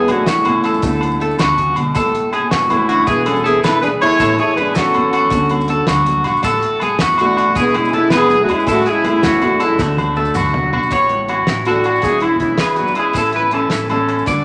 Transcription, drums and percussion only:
0.08 closed hi-hat, muted conga, low conga, low agogo, maracas
0.18 high conga
0.26 snare, closed hi-hat, maracas
0.38 low conga
0.45 closed hi-hat, muted conga, high conga, low conga, low agogo
0.64 closed hi-hat, low conga, low agogo, maracas
0.74 low conga, maracas
0.82 kick, closed hi-hat, muted conga, high conga, maracas
1.01 closed hi-hat, low conga, low agogo, maracas
1.11 high conga, maracas
1.20 closed hi-hat, muted conga
1.31 maracas
1.39 snare, closed hi-hat, low conga, low agogo, maracas
1.50 high conga
1.58 kick, closed hi-hat, maracas
1.69 low conga
1.76 closed hi-hat, high conga, low agogo, maracas
1.87 low conga
1.95 kick, closed hi-hat, muted conga, low conga, low agogo, maracas
2.04 high conga, low conga
2.15 closed hi-hat
2.33 closed hi-hat, low agogo, maracas
2.41 high conga
2.51 snare, closed hi-hat, low conga, maracas
2.60 low conga, maracas
2.70 closed hi-hat, muted conga, high conga, low conga, low agogo, maracas
2.80 low conga
2.89 closed hi-hat, low agogo
2.99 low conga
3.07 kick, closed hi-hat, muted conga, high conga, low conga, maracas
3.26 closed hi-hat, low conga, low agogo
3.36 high conga, maracas
3.46 closed hi-hat, muted conga
3.64 snare, closed hi-hat, low conga, low agogo, maracas
3.76 high conga
3.82 closed hi-hat, muted conga, maracas
3.93 low conga
4.01 closed hi-hat, high conga, low conga, low agogo, maracas
4.11 low conga, maracas
4.20 kick, closed hi-hat, muted conga, low conga, low agogo, maracas
4.30 high conga, low conga
4.38 closed hi-hat
4.57 closed hi-hat, muted conga, low conga, low agogo, maracas
4.67 high conga
4.75 snare, closed hi-hat, low conga, maracas
4.86 low conga
4.94 closed hi-hat, muted conga, high conga, low conga, low agogo
5.05 low conga
5.13 closed hi-hat, low agogo
5.24 low conga
5.30 kick, closed hi-hat, muted conga, high conga, low conga, maracas
5.49 closed hi-hat, low conga, low agogo
5.60 high conga, maracas
5.68 closed hi-hat, muted conga
5.87 snare, closed hi-hat, low conga, low agogo, maracas
5.99 high conga
6.06 closed hi-hat, muted conga, maracas
6.17 low conga
6.24 closed hi-hat, high conga, low conga, low agogo, maracas
6.37 low conga, maracas
6.43 kick, closed hi-hat, muted conga, low conga, low agogo, maracas
6.54 high conga, low conga
6.62 closed hi-hat
6.80 closed hi-hat, muted conga, low conga, low agogo, maracas
6.99 snare, closed hi-hat, low conga, maracas
7.12 low conga
7.18 closed hi-hat, high conga, low conga, low agogo, maracas
7.37 closed hi-hat, low agogo
7.49 low conga
7.55 kick, closed hi-hat, muted conga, high conga, low conga, maracas
7.74 closed hi-hat, low conga, low agogo
7.85 high conga, maracas
7.93 closed hi-hat, muted conga
8.10 snare, closed hi-hat, low conga, low agogo, maracas
8.21 high conga
8.30 closed hi-hat, muted conga, maracas
8.40 low conga
8.49 closed hi-hat, high conga, low conga, low agogo, maracas
8.59 low conga, maracas
8.67 kick, closed hi-hat, muted conga, low agogo, maracas
8.77 low conga, maracas
8.86 closed hi-hat, maracas
9.04 closed hi-hat, muted conga, low conga, low agogo, maracas
9.13 high conga, low conga
9.23 snare, closed hi-hat, low conga, maracas
9.33 low conga
9.42 closed hi-hat, muted conga, high conga, low agogo
9.60 closed hi-hat, low agogo, maracas
9.70 low conga
9.78 kick, snare, muted conga, high conga, low conga, maracas
9.97 high tom, low conga, low agogo, maracas
10.08 high conga, low conga
10.16 muted conga, low conga, maracas
10.25 maracas
10.35 mid tom, low conga, low agogo, maracas
10.46 high conga
10.54 floor tom, muted conga, low conga
10.64 low conga
10.73 floor tom, high conga, low agogo
10.83 maracas
10.91 kick, closed hi-hat, muted conga, low agogo, maracas
11.02 maracas
11.09 closed hi-hat, low conga
11.20 high conga
11.28 closed hi-hat, muted conga, low agogo
11.38 low conga
11.47 snare, closed hi-hat, maracas
11.58 low conga
11.65 closed hi-hat, muted conga, low agogo
11.76 high conga
11.84 closed hi-hat, low agogo
11.96 maracas
12.02 kick, closed hi-hat, muted conga, low conga, maracas
12.20 closed hi-hat, low agogo
12.33 high conga
12.40 kick, closed hi-hat, muted conga, maracas
12.52 low conga
12.58 snare, closed hi-hat, low agogo, maracas
12.76 closed hi-hat, muted conga
12.88 high conga, low conga, maracas
12.95 closed hi-hat, low conga, low agogo
13.13 kick, closed hi-hat, muted conga, low agogo, maracas
13.26 maracas
13.33 closed hi-hat, low conga
13.44 high conga
13.51 closed hi-hat, muted conga, low agogo
13.63 low conga
13.70 snare, closed hi-hat, maracas
13.82 low conga
13.90 closed hi-hat, muted conga, low agogo
14.01 high conga
14.09 closed hi-hat, low agogo
14.18 low conga, maracas
14.26 kick, closed hi-hat, muted conga, low conga, maracas

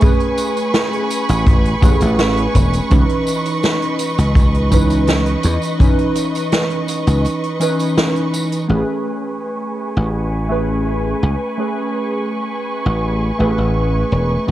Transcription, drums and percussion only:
0.01 kick, closed hi-hat, tambourine
0.20 closed hi-hat
0.38 closed hi-hat, tambourine
0.57 closed hi-hat, tambourine
0.74 snare, closed hi-hat, tambourine
0.93 closed hi-hat
1.10 closed hi-hat, tambourine
1.29 closed hi-hat, tambourine
1.47 kick, closed hi-hat, tambourine
1.65 closed hi-hat
1.82 kick, closed hi-hat, tambourine
2.00 closed hi-hat, tambourine
2.19 snare, closed hi-hat, tambourine
2.37 closed hi-hat
2.55 kick, closed hi-hat, tambourine
2.73 closed hi-hat, tambourine
2.91 kick, closed hi-hat, tambourine
3.09 closed hi-hat
3.27 closed hi-hat, tambourine
3.45 closed hi-hat, tambourine
3.63 snare, closed hi-hat, tambourine
3.82 closed hi-hat
3.99 closed hi-hat, tambourine
4.18 closed hi-hat, tambourine
4.35 kick, closed hi-hat, tambourine
4.54 closed hi-hat
4.72 kick, closed hi-hat, tambourine
4.90 closed hi-hat, tambourine
5.07 snare, closed hi-hat, tambourine
5.26 closed hi-hat
5.43 closed hi-hat, tambourine
5.62 closed hi-hat, tambourine
5.80 kick, closed hi-hat, tambourine
5.99 closed hi-hat
6.15 closed hi-hat, tambourine
6.35 closed hi-hat, tambourine
6.52 snare, closed hi-hat, tambourine
6.70 closed hi-hat
6.88 closed hi-hat, tambourine
7.07 closed hi-hat, tambourine
7.25 closed hi-hat, tambourine
7.44 closed hi-hat
7.61 closed hi-hat, tambourine
7.79 closed hi-hat, tambourine
7.98 snare, closed hi-hat, tambourine
8.16 closed hi-hat
8.34 closed hi-hat, tambourine
8.52 closed hi-hat, tambourine

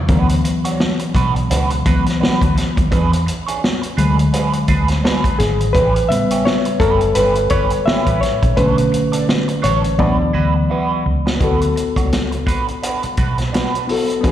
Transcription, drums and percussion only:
0.08 kick, closed hi-hat
0.29 closed hi-hat
0.45 closed hi-hat
0.65 closed hi-hat
0.80 snare
0.99 closed hi-hat
1.15 kick, closed hi-hat
1.36 closed hi-hat
1.51 closed hi-hat
1.70 closed hi-hat
1.86 kick, closed hi-hat
2.06 snare, closed hi-hat
2.23 snare
2.41 kick, closed hi-hat
2.57 snare, closed hi-hat
2.77 kick, closed hi-hat
2.92 kick, closed hi-hat
3.13 closed hi-hat
3.28 closed hi-hat
3.48 closed hi-hat
3.64 snare
3.83 closed hi-hat
3.98 closed hi-hat
4.19 closed hi-hat
4.34 closed hi-hat
4.53 closed hi-hat
4.68 kick, closed hi-hat
4.88 snare, closed hi-hat
5.05 snare
5.24 kick, closed hi-hat
5.40 snare, closed hi-hat
5.61 closed hi-hat
5.75 kick, closed hi-hat
5.96 closed hi-hat
6.12 closed hi-hat
6.31 closed hi-hat
6.47 snare
6.65 closed hi-hat
6.80 kick, closed hi-hat
7.01 closed hi-hat
7.15 closed hi-hat
7.35 closed hi-hat
7.50 kick, closed hi-hat
7.70 closed hi-hat
7.87 snare
8.07 kick, closed hi-hat
8.23 snare, closed hi-hat
8.43 kick, closed hi-hat
8.57 kick, closed hi-hat
8.78 closed hi-hat
8.94 closed hi-hat
9.13 closed hi-hat
9.29 snare
9.48 closed hi-hat
9.64 closed hi-hat
9.84 closed hi-hat
9.99 kick
11.27 snare
11.41 kick, closed hi-hat
11.62 closed hi-hat
11.77 closed hi-hat
11.96 kick, closed hi-hat
12.13 snare, closed hi-hat
12.32 closed hi-hat
12.47 kick, closed hi-hat
12.68 closed hi-hat
12.83 closed hi-hat
13.03 closed hi-hat
13.17 kick, closed hi-hat
13.38 snare, closed hi-hat
13.54 snare, closed hi-hat
13.75 closed hi-hat
13.89 open hi-hat
14.10 closed hi-hat
14.24 kick, closed hi-hat

